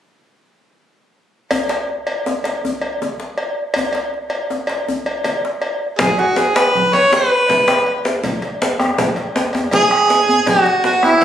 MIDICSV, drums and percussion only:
0, 0, Header, 1, 4, 480
1, 0, Start_track
1, 0, Tempo, 373367
1, 1939, Time_signature, 12, 3, 24, 8
1, 14458, End_track
2, 0, Start_track
2, 0, Title_t, "Bombo"
2, 7709, Note_on_c, 9, 43, 103
2, 7838, Note_off_c, 9, 43, 0
2, 8438, Note_on_c, 9, 37, 75
2, 8567, Note_off_c, 9, 37, 0
2, 8680, Note_on_c, 9, 37, 30
2, 8680, Note_on_c, 9, 43, 94
2, 8808, Note_off_c, 9, 37, 0
2, 8808, Note_off_c, 9, 43, 0
2, 8915, Note_on_c, 9, 37, 30
2, 9043, Note_off_c, 9, 37, 0
2, 9153, Note_on_c, 9, 37, 29
2, 9282, Note_off_c, 9, 37, 0
2, 9395, Note_on_c, 9, 37, 26
2, 9523, Note_off_c, 9, 37, 0
2, 9631, Note_on_c, 9, 37, 30
2, 9631, Note_on_c, 9, 43, 85
2, 9760, Note_off_c, 9, 37, 0
2, 9760, Note_off_c, 9, 43, 0
2, 9873, Note_on_c, 9, 37, 68
2, 10001, Note_off_c, 9, 37, 0
2, 10590, Note_on_c, 9, 43, 91
2, 10719, Note_off_c, 9, 43, 0
2, 11307, Note_on_c, 9, 37, 66
2, 11436, Note_off_c, 9, 37, 0
2, 11545, Note_on_c, 9, 37, 26
2, 11545, Note_on_c, 9, 43, 83
2, 11673, Note_off_c, 9, 37, 0
2, 11673, Note_off_c, 9, 43, 0
2, 11790, Note_on_c, 9, 37, 28
2, 11918, Note_off_c, 9, 37, 0
2, 12036, Note_on_c, 9, 37, 27
2, 12164, Note_off_c, 9, 37, 0
2, 12271, Note_on_c, 9, 37, 29
2, 12399, Note_off_c, 9, 37, 0
2, 12503, Note_on_c, 9, 37, 28
2, 12503, Note_on_c, 9, 43, 82
2, 12631, Note_off_c, 9, 37, 0
2, 12631, Note_off_c, 9, 43, 0
2, 12741, Note_on_c, 9, 37, 71
2, 12869, Note_off_c, 9, 37, 0
2, 13455, Note_on_c, 9, 43, 90
2, 13584, Note_off_c, 9, 43, 0
2, 14178, Note_on_c, 9, 37, 74
2, 14307, Note_off_c, 9, 37, 0
2, 14458, End_track
3, 0, Start_track
3, 0, Title_t, "Djembe"
3, 1944, Note_on_c, 9, 63, 62
3, 1944, Note_on_c, 9, 64, 65
3, 2073, Note_off_c, 9, 63, 0
3, 2073, Note_off_c, 9, 64, 0
3, 2177, Note_on_c, 9, 62, 53
3, 2306, Note_off_c, 9, 62, 0
3, 2431, Note_on_c, 9, 62, 20
3, 2560, Note_off_c, 9, 62, 0
3, 2669, Note_on_c, 9, 62, 19
3, 2797, Note_off_c, 9, 62, 0
3, 2909, Note_on_c, 9, 63, 65
3, 3037, Note_off_c, 9, 63, 0
3, 3153, Note_on_c, 9, 62, 46
3, 3281, Note_off_c, 9, 62, 0
3, 3404, Note_on_c, 9, 64, 61
3, 3533, Note_off_c, 9, 64, 0
3, 3881, Note_on_c, 9, 62, 20
3, 3881, Note_on_c, 9, 63, 57
3, 4009, Note_off_c, 9, 62, 0
3, 4009, Note_off_c, 9, 63, 0
3, 4109, Note_on_c, 9, 62, 42
3, 4238, Note_off_c, 9, 62, 0
3, 4838, Note_on_c, 9, 63, 51
3, 4838, Note_on_c, 9, 64, 49
3, 4966, Note_off_c, 9, 63, 0
3, 4966, Note_off_c, 9, 64, 0
3, 5075, Note_on_c, 9, 62, 43
3, 5204, Note_off_c, 9, 62, 0
3, 5321, Note_on_c, 9, 62, 18
3, 5449, Note_off_c, 9, 62, 0
3, 5548, Note_on_c, 9, 62, 17
3, 5676, Note_off_c, 9, 62, 0
3, 5790, Note_on_c, 9, 63, 57
3, 5919, Note_off_c, 9, 63, 0
3, 6034, Note_on_c, 9, 62, 43
3, 6163, Note_off_c, 9, 62, 0
3, 6281, Note_on_c, 9, 64, 58
3, 6409, Note_off_c, 9, 64, 0
3, 6752, Note_on_c, 9, 62, 18
3, 6752, Note_on_c, 9, 63, 57
3, 6881, Note_off_c, 9, 62, 0
3, 6881, Note_off_c, 9, 63, 0
3, 7004, Note_on_c, 9, 62, 41
3, 7133, Note_off_c, 9, 62, 0
3, 7698, Note_on_c, 9, 62, 89
3, 7723, Note_on_c, 9, 63, 65
3, 7723, Note_on_c, 9, 64, 67
3, 7827, Note_off_c, 9, 62, 0
3, 7852, Note_off_c, 9, 63, 0
3, 7852, Note_off_c, 9, 64, 0
3, 7957, Note_on_c, 9, 62, 57
3, 8086, Note_off_c, 9, 62, 0
3, 8181, Note_on_c, 9, 62, 73
3, 8310, Note_off_c, 9, 62, 0
3, 8432, Note_on_c, 9, 62, 90
3, 8561, Note_off_c, 9, 62, 0
3, 8677, Note_on_c, 9, 63, 72
3, 8806, Note_off_c, 9, 63, 0
3, 8913, Note_on_c, 9, 62, 72
3, 8917, Note_off_c, 9, 62, 0
3, 8917, Note_on_c, 9, 62, 52
3, 9045, Note_off_c, 9, 62, 0
3, 9150, Note_on_c, 9, 64, 79
3, 9161, Note_on_c, 9, 62, 86
3, 9278, Note_off_c, 9, 64, 0
3, 9289, Note_off_c, 9, 62, 0
3, 9401, Note_on_c, 9, 62, 22
3, 9530, Note_off_c, 9, 62, 0
3, 9637, Note_on_c, 9, 62, 73
3, 9639, Note_on_c, 9, 63, 74
3, 9766, Note_off_c, 9, 62, 0
3, 9767, Note_off_c, 9, 63, 0
3, 9865, Note_on_c, 9, 62, 53
3, 9870, Note_off_c, 9, 62, 0
3, 9870, Note_on_c, 9, 62, 84
3, 9998, Note_off_c, 9, 62, 0
3, 10351, Note_on_c, 9, 62, 81
3, 10479, Note_off_c, 9, 62, 0
3, 10588, Note_on_c, 9, 63, 76
3, 10588, Note_on_c, 9, 64, 71
3, 10716, Note_off_c, 9, 63, 0
3, 10716, Note_off_c, 9, 64, 0
3, 10825, Note_on_c, 9, 62, 60
3, 10954, Note_off_c, 9, 62, 0
3, 11079, Note_on_c, 9, 62, 80
3, 11207, Note_off_c, 9, 62, 0
3, 11309, Note_on_c, 9, 63, 70
3, 11438, Note_off_c, 9, 63, 0
3, 11547, Note_on_c, 9, 63, 75
3, 11550, Note_on_c, 9, 62, 74
3, 11676, Note_off_c, 9, 63, 0
3, 11679, Note_off_c, 9, 62, 0
3, 11784, Note_on_c, 9, 62, 55
3, 11912, Note_off_c, 9, 62, 0
3, 12029, Note_on_c, 9, 62, 69
3, 12029, Note_on_c, 9, 64, 78
3, 12158, Note_off_c, 9, 62, 0
3, 12158, Note_off_c, 9, 64, 0
3, 12262, Note_on_c, 9, 62, 22
3, 12274, Note_on_c, 9, 63, 68
3, 12390, Note_off_c, 9, 62, 0
3, 12402, Note_off_c, 9, 63, 0
3, 12497, Note_on_c, 9, 63, 79
3, 12513, Note_on_c, 9, 62, 70
3, 12625, Note_off_c, 9, 63, 0
3, 12641, Note_off_c, 9, 62, 0
3, 12737, Note_on_c, 9, 62, 54
3, 12865, Note_off_c, 9, 62, 0
3, 12986, Note_on_c, 9, 62, 67
3, 13114, Note_off_c, 9, 62, 0
3, 13228, Note_on_c, 9, 63, 70
3, 13356, Note_off_c, 9, 63, 0
3, 13456, Note_on_c, 9, 63, 71
3, 13456, Note_on_c, 9, 64, 74
3, 13461, Note_on_c, 9, 62, 73
3, 13584, Note_off_c, 9, 63, 0
3, 13584, Note_off_c, 9, 64, 0
3, 13589, Note_off_c, 9, 62, 0
3, 13704, Note_on_c, 9, 62, 56
3, 13832, Note_off_c, 9, 62, 0
3, 13934, Note_on_c, 9, 62, 75
3, 14062, Note_off_c, 9, 62, 0
3, 14179, Note_on_c, 9, 63, 73
3, 14308, Note_off_c, 9, 63, 0
3, 14418, Note_on_c, 9, 62, 72
3, 14458, Note_off_c, 9, 62, 0
3, 14458, End_track
4, 0, Start_track
4, 0, Title_t, "Drums"
4, 1937, Note_on_c, 9, 56, 47
4, 2065, Note_off_c, 9, 56, 0
4, 2180, Note_on_c, 9, 56, 40
4, 2308, Note_off_c, 9, 56, 0
4, 2657, Note_on_c, 9, 56, 38
4, 2785, Note_off_c, 9, 56, 0
4, 3138, Note_on_c, 9, 56, 36
4, 3267, Note_off_c, 9, 56, 0
4, 3619, Note_on_c, 9, 56, 36
4, 3747, Note_off_c, 9, 56, 0
4, 4339, Note_on_c, 9, 56, 36
4, 4468, Note_off_c, 9, 56, 0
4, 4805, Note_on_c, 9, 56, 48
4, 4933, Note_off_c, 9, 56, 0
4, 5047, Note_on_c, 9, 56, 39
4, 5175, Note_off_c, 9, 56, 0
4, 5526, Note_on_c, 9, 56, 37
4, 5655, Note_off_c, 9, 56, 0
4, 6005, Note_on_c, 9, 56, 40
4, 6134, Note_off_c, 9, 56, 0
4, 6507, Note_on_c, 9, 56, 37
4, 6635, Note_off_c, 9, 56, 0
4, 6742, Note_on_c, 9, 56, 47
4, 6870, Note_off_c, 9, 56, 0
4, 7219, Note_on_c, 9, 56, 39
4, 7347, Note_off_c, 9, 56, 0
4, 7701, Note_on_c, 9, 56, 55
4, 7724, Note_on_c, 9, 63, 74
4, 7724, Note_on_c, 9, 64, 70
4, 7830, Note_off_c, 9, 56, 0
4, 7853, Note_off_c, 9, 63, 0
4, 7853, Note_off_c, 9, 64, 0
4, 7946, Note_on_c, 9, 56, 47
4, 8075, Note_off_c, 9, 56, 0
4, 8425, Note_on_c, 9, 56, 44
4, 8441, Note_on_c, 9, 63, 24
4, 8554, Note_off_c, 9, 56, 0
4, 8570, Note_off_c, 9, 63, 0
4, 8682, Note_on_c, 9, 63, 72
4, 8811, Note_off_c, 9, 63, 0
4, 8908, Note_on_c, 9, 56, 44
4, 9036, Note_off_c, 9, 56, 0
4, 9384, Note_on_c, 9, 56, 42
4, 9513, Note_off_c, 9, 56, 0
4, 9618, Note_on_c, 9, 56, 49
4, 9635, Note_on_c, 9, 63, 67
4, 9635, Note_on_c, 9, 64, 65
4, 9747, Note_off_c, 9, 56, 0
4, 9763, Note_off_c, 9, 63, 0
4, 9763, Note_off_c, 9, 64, 0
4, 9870, Note_on_c, 9, 63, 21
4, 9998, Note_off_c, 9, 63, 0
4, 10105, Note_on_c, 9, 63, 21
4, 10109, Note_on_c, 9, 56, 45
4, 10234, Note_off_c, 9, 63, 0
4, 10237, Note_off_c, 9, 56, 0
4, 10588, Note_on_c, 9, 63, 68
4, 10588, Note_on_c, 9, 64, 66
4, 10597, Note_on_c, 9, 56, 54
4, 10716, Note_off_c, 9, 63, 0
4, 10716, Note_off_c, 9, 64, 0
4, 10725, Note_off_c, 9, 56, 0
4, 10827, Note_on_c, 9, 56, 45
4, 10956, Note_off_c, 9, 56, 0
4, 11307, Note_on_c, 9, 56, 41
4, 11317, Note_on_c, 9, 63, 21
4, 11435, Note_off_c, 9, 56, 0
4, 11445, Note_off_c, 9, 63, 0
4, 11550, Note_on_c, 9, 63, 68
4, 11550, Note_on_c, 9, 64, 62
4, 11679, Note_off_c, 9, 63, 0
4, 11679, Note_off_c, 9, 64, 0
4, 11775, Note_on_c, 9, 56, 42
4, 11904, Note_off_c, 9, 56, 0
4, 12250, Note_on_c, 9, 56, 41
4, 12379, Note_off_c, 9, 56, 0
4, 12488, Note_on_c, 9, 56, 46
4, 12506, Note_on_c, 9, 63, 63
4, 12506, Note_on_c, 9, 64, 64
4, 12616, Note_off_c, 9, 56, 0
4, 12634, Note_off_c, 9, 63, 0
4, 12634, Note_off_c, 9, 64, 0
4, 12749, Note_on_c, 9, 63, 21
4, 12877, Note_off_c, 9, 63, 0
4, 12976, Note_on_c, 9, 56, 36
4, 12985, Note_on_c, 9, 63, 21
4, 13105, Note_off_c, 9, 56, 0
4, 13114, Note_off_c, 9, 63, 0
4, 13453, Note_on_c, 9, 56, 51
4, 13461, Note_on_c, 9, 63, 69
4, 13461, Note_on_c, 9, 64, 61
4, 13581, Note_off_c, 9, 56, 0
4, 13590, Note_off_c, 9, 63, 0
4, 13590, Note_off_c, 9, 64, 0
4, 13698, Note_on_c, 9, 56, 41
4, 13826, Note_off_c, 9, 56, 0
4, 14174, Note_on_c, 9, 56, 40
4, 14185, Note_on_c, 9, 63, 20
4, 14302, Note_off_c, 9, 56, 0
4, 14314, Note_off_c, 9, 63, 0
4, 14413, Note_on_c, 9, 63, 64
4, 14413, Note_on_c, 9, 64, 61
4, 14458, Note_off_c, 9, 63, 0
4, 14458, Note_off_c, 9, 64, 0
4, 14458, End_track
0, 0, End_of_file